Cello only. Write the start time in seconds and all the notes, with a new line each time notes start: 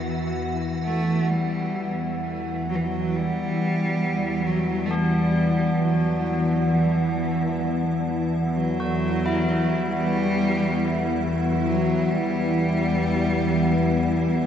Already playing: E3
0.84 A3
1.28 G3
2.69 F#3
2.75 E3
2.84 F#3
3.16 G3
4.47 F#3
4.86 A3
4.95 G3
5.82 F#3
6.74 E3
8.52 F#3
9.83 G3
11.66 F#3
12.10 G3